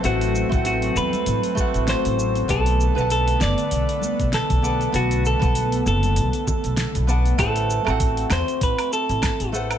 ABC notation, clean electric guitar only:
X:1
M:4/4
L:1/8
Q:"Swing 16ths" 1/4=98
K:Ador
V:1 name="Clean electric guitar"
F2 F B3 c2 | A2 A d3 A2 | F A2 A4 z | A3 c B A2 z |]